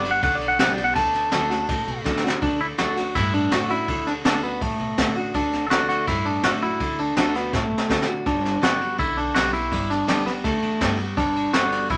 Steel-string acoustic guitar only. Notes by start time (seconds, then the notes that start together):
Already playing: G2
0.04 B3 G4
0.23 D3
0.59 D3 G3 B3 G4
0.77 B3 G4
0.96 D3
1.31 D3 A3 D4 F#4
1.50 D4 F#4
1.69 A2
2.04 D3 A3 D4 F#4
2.23 D4 F#4
2.42 D3
2.78 D3 A3 D4 F#4
2.96 D4 F#4
3.15 A2
3.51 D3 A3 D4 F#4
3.69 D4 F#4
3.88 D3
4.24 D3 A3 D4 F#4
4.43 D4 F#4
4.62 A2
4.97 D3 A3 D4 F#4
5.16 D4 F#4
5.34 D3
5.70 D3 A3 D4 F#4
6.08 A2
6.43 D3 A3 D4 F#4
6.62 D4 F#4
6.81 D3
7.17 D3 A3 D4 F#4
7.35 D4 F#4
7.53 A2
7.89 D3 A3 D4 F#4
8.07 D4 F#4
8.26 G2
8.62 D3 G3 B3 G4
8.80 B3 G4
8.98 D3
9.35 D3 G3 B3 G4
9.53 B3 G4
9.72 G2
10.07 D3 G3 B3 G4
10.26 B3 G4
10.45 D3
10.80 D3 G3 B3 G4
10.99 B3 G4
11.17 G2
11.53 D3 G3 B3
11.90 B2